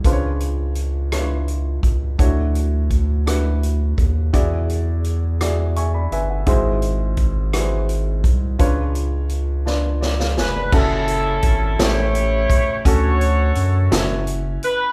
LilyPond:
<<
  \new Staff \with { instrumentName = "Horn section" } { \time 6/8 \key fis \minor \tempo 4. = 56 r2. | r2. | r2. | r2. |
r2 r8 b'8 | <cis' e' a'>4. <e' g' cis''>4. | <fis' a' cis''>2 r8 b'8 | }
  \new Staff \with { instrumentName = "Upright piano" } { \time 6/8 \key fis \minor << { r2. | r2. | r2 <e'' gis'' cis'''>16 <d'' b''>16 <b' e'' gis''>16 fis''16~ | fis''16 r2 r8. |
r2 <eis' d''>16 <gis' eis''>16 <b' gis''>16 <d'' b''>16~ | <d'' b''>16 r2 r8. | r2. | } \\ { <cis d' eis' b' bis' cis''>4. <d' e' eis' b' cis''>4. | <d d' e' fis' cis''>4. <d' e' fis' b'>4. | <e e' fis' gis' d''>4. <e' fis' gis' d''>4. | <gis, e' fis' gis' bis'>4. <e' fis' gis' b' bis'>4. |
<cis d' eis' b' cis''>4. <d' eis' b' d''>4. | <cis' e' fis' a'>4. <a, cis' e' g' a'>4. | <d cis' d' fis' a'>4. <cis' e' fis' a' cis''>4. | } >> }
  \new Staff \with { instrumentName = "Sub bass" } { \clef bass \time 6/8 \key fis \minor cis,2~ cis,8 cis,8 | d,2~ d,8 dis,8 | e,2~ e,8 g,,8 | gis,,2~ gis,,8 bis,,8 |
cis,2~ cis,8 eis,,8 | fis,,4 gis,,8 a,,4 r8 | d,4 fis,8 fis,,4 r8 | }
  \new DrumStaff \with { instrumentName = "Drums" } \drummode { \time 6/8 <hh bd>8 hh8 hh8 <hh ss>8 hh8 <hh bd>8 | <hh bd>8 hh8 <hh bd>8 <hh ss>8 hh8 <hh bd>8 | <hh bd>8 hh8 hh8 <hh ss>8 hh8 hh8 | <hh bd>8 hh8 <hh bd>8 <hh ss>8 hh8 <hh bd>8 |
<hh bd>8 hh8 hh8 sn8 sn16 sn16 sn8 | <cymc bd>8 hh8 <hh bd>8 <hh sn>8 hh8 <hh bd>8 | <hh bd>8 hh8 hh8 <hh sn>8 hh8 hh8 | }
>>